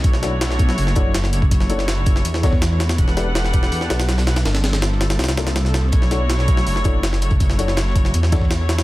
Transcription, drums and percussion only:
0.04 kick, closed hi-hat
0.14 snare
0.23 snare, closed hi-hat
0.41 snare, closed hi-hat
0.50 snare
0.59 kick, closed hi-hat
0.69 snare
0.78 closed hi-hat, open hi-hat
0.87 snare
0.95 kick, closed hi-hat
1.14 snare, closed hi-hat
1.24 snare
1.33 closed hi-hat
1.42 kick, closed hi-hat
1.51 kick, closed hi-hat
1.60 snare, closed hi-hat
1.70 closed hi-hat
1.79 snare
1.88 snare, closed hi-hat
1.97 snare
2.06 kick, closed hi-hat
2.16 snare
2.25 closed hi-hat
2.34 snare
2.43 kick, snare, closed hi-hat
2.53 kick, snare
2.62 snare, closed hi-hat
2.71 snare
2.80 snare, closed hi-hat
2.89 snare, closed hi-hat
2.98 kick, closed hi-hat
3.08 snare
3.17 snare, closed hi-hat
3.35 snare, closed hi-hat
3.44 snare
3.53 kick, closed hi-hat
3.63 snare
3.72 closed hi-hat, open hi-hat
3.81 snare
3.90 snare, closed hi-hat
4.00 snare, closed hi-hat
4.09 snare, closed hi-hat
4.18 snare, closed hi-hat
4.27 snare, closed hi-hat
4.36 snare, closed hi-hat
4.45 snare, closed hi-hat
4.55 snare, closed hi-hat
4.64 snare, closed hi-hat
4.73 snare, closed hi-hat
4.82 snare, closed hi-hat
4.92 snare
5.01 snare, closed hi-hat
5.10 snare, closed hi-hat
5.19 snare, closed hi-hat
5.24 snare, closed hi-hat
5.28 snare, closed hi-hat
5.37 snare, closed hi-hat
5.47 snare, closed hi-hat
5.56 snare, closed hi-hat
5.65 snare
5.74 snare, closed hi-hat
5.92 kick, closed hi-hat
6.02 snare
6.11 snare, closed hi-hat
6.30 snare, closed hi-hat
6.39 snare
6.48 kick, closed hi-hat
6.57 snare
6.67 closed hi-hat, open hi-hat
6.76 snare
6.84 kick, closed hi-hat
7.03 snare, closed hi-hat
7.13 snare
7.22 closed hi-hat
7.30 kick, closed hi-hat
7.40 kick, closed hi-hat
7.50 snare, closed hi-hat
7.59 closed hi-hat
7.68 snare
7.77 snare, closed hi-hat
7.86 snare
7.96 kick, closed hi-hat
8.05 snare
8.14 closed hi-hat
8.23 snare
8.32 kick, snare, closed hi-hat
8.42 kick, snare
8.51 snare, closed hi-hat
8.60 snare
8.69 snare, closed hi-hat
8.78 snare, closed hi-hat

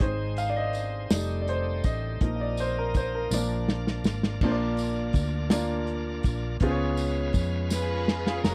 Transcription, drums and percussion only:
0.01 kick
0.37 closed hi-hat, tambourine
0.73 closed hi-hat, tambourine
1.10 snare, closed hi-hat, tambourine
1.48 closed hi-hat
1.84 kick, closed hi-hat, tambourine
2.21 kick, closed hi-hat
2.57 closed hi-hat, tambourine
2.94 kick, closed hi-hat, tambourine
3.31 snare, tambourine
3.69 snare
3.87 snare
4.04 snare, tambourine
4.23 snare
4.41 kick, crash
4.77 closed hi-hat, tambourine
5.13 kick, closed hi-hat, tambourine
5.50 snare, closed hi-hat, tambourine
5.87 closed hi-hat
6.23 kick, closed hi-hat, tambourine
6.60 kick, closed hi-hat
6.97 closed hi-hat, tambourine
7.33 kick, closed hi-hat, tambourine
7.70 snare, tambourine
8.08 snare
8.27 snare
8.44 snare, tambourine

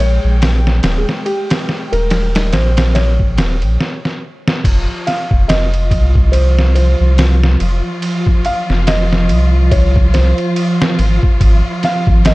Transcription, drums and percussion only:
0.00 ride
0.42 snare, open hi-hat
0.67 snare
0.83 snare, ride
1.09 snare
1.26 ride
1.50 snare, ride
1.69 snare
1.93 ride
2.10 snare, ride
2.35 snare, ride
2.53 snare, ride
2.77 snare, ride
2.95 snare, ride
3.20 kick
3.38 snare, ride
3.62 ride
3.81 snare
4.05 snare
4.48 snare
4.64 kick, crash, ride
5.07 snare, ride
5.31 kick
5.49 snare, ride
5.74 ride
5.91 kick, ride
6.15 kick
6.33 ride
6.59 snare
6.76 ride
7.18 snare, open hi-hat
7.43 snare
7.60 ride
8.02 ride
8.27 kick
8.45 ride
8.70 snare
8.87 snare, ride
9.13 snare
9.29 ride
9.71 kick, ride
9.96 kick
10.14 snare, ride
10.38 ride
10.56 ride
10.82 snare
10.99 ride
11.23 kick
11.41 kick, ride
11.83 snare, ride
12.07 kick
12.25 snare, ride

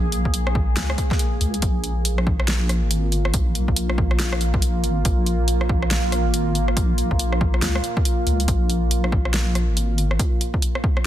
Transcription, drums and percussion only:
0.12 closed hi-hat
0.25 kick
0.34 closed hi-hat
0.47 cross-stick
0.55 kick
0.77 snare, closed hi-hat
0.90 cross-stick
0.98 kick, closed hi-hat
1.11 kick, snare
1.19 closed hi-hat
1.41 closed hi-hat
1.54 closed hi-hat
1.62 kick, closed hi-hat
1.84 closed hi-hat
2.05 closed hi-hat
2.18 cross-stick
2.27 kick
2.40 cross-stick
2.48 snare, closed hi-hat
2.69 cross-stick, closed hi-hat
2.91 closed hi-hat
3.12 closed hi-hat
3.25 cross-stick
3.34 kick, closed hi-hat
3.55 closed hi-hat
3.68 kick
3.76 closed hi-hat
3.90 cross-stick
3.98 kick
4.11 cross-stick
4.19 snare, closed hi-hat
4.33 cross-stick
4.41 closed hi-hat
4.54 kick
4.62 closed hi-hat
4.84 closed hi-hat
5.05 kick, closed hi-hat
5.26 closed hi-hat
5.48 closed hi-hat
5.61 cross-stick
5.69 kick
5.82 cross-stick
5.91 snare, closed hi-hat
6.12 cross-stick, closed hi-hat
6.34 closed hi-hat
6.55 closed hi-hat
6.68 cross-stick
6.77 kick, closed hi-hat
6.98 closed hi-hat
7.11 kick
7.19 closed hi-hat
7.32 cross-stick
7.41 kick
7.54 cross-stick
7.62 snare, closed hi-hat
7.75 cross-stick
7.84 closed hi-hat
7.97 kick
8.05 closed hi-hat
8.27 closed hi-hat
8.40 closed hi-hat
8.48 kick, closed hi-hat
8.70 closed hi-hat
8.91 closed hi-hat
9.04 cross-stick
9.12 kick
9.25 cross-stick
9.34 snare, closed hi-hat
9.55 cross-stick, closed hi-hat
9.77 closed hi-hat
9.98 closed hi-hat
10.11 cross-stick
10.19 kick, closed hi-hat
10.41 closed hi-hat
10.54 kick
10.62 closed hi-hat
10.75 cross-stick
10.84 kick
10.97 cross-stick

